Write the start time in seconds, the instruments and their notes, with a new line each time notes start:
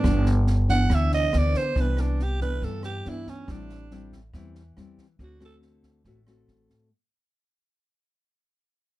Already playing: nylon-string guitar E3 B3 D4, alto saxophone D4
0.04 upright bass G1, nylon-string guitar G2, kick, cross-stick, snare
0.26 snare
0.47 snare
0.68 nylon-string guitar E3 B3 D4, alto saxophone F#5, kick, snare
0.90 upright bass D2, nylon-string guitar D3, kick, cross-stick, snare
0.95 alto saxophone E5
1.11 alto saxophone D#5, snare
1.33 upright bass D2, nylon-string guitar E3 B3 D4, cross-stick, snare
1.38 alto saxophone D5
1.54 alto saxophone C5, kick, snare
1.76 upright bass C2, nylon-string guitar C3 E3 B3 D4, kick, snare
1.81 alto saxophone B4
1.97 alto saxophone D4, cross-stick, snare
2.19 alto saxophone G4, snare
2.40 nylon-string guitar E3 B3 D4, alto saxophone B4, kick, snare
2.62 nylon-string guitar G2, upright bass G2, alto saxophone A4, kick, snare
2.83 alto saxophone G4, cross-stick, snare
3.05 upright bass G2, nylon-string guitar E3 B3 D4, snare
3.09 alto saxophone E4
3.27 alto saxophone C#4, kick, snare
3.48 upright bass A1, nylon-string guitar A2 G3 C4 E4, alto saxophone D4, kick, cross-stick, snare
3.69 snare
3.91 nylon-string guitar G3 C4 E4, snare
4.12 kick, snare
4.33 upright bass E2, nylon-string guitar E3 G3 C4 E4, kick, cross-stick, snare
4.55 snare
4.77 upright bass E2, nylon-string guitar G3 C4 E4, cross-stick, snare
4.98 kick, snare
5.19 upright bass D2, nylon-string guitar D3 A3 C4 F#4, kick, snare
5.23 alto saxophone F#4
5.40 nylon-string guitar A3 C4 F#4, cross-stick, snare
5.45 alto saxophone A4
5.62 snare
5.83 kick, snare
6.04 upright bass A1, nylon-string guitar A2 A3 C4 F#4, kick, snare
6.27 nylon-string guitar A3 C4 F#4, cross-stick, snare
6.48 upright bass A1, snare
6.69 kick, snare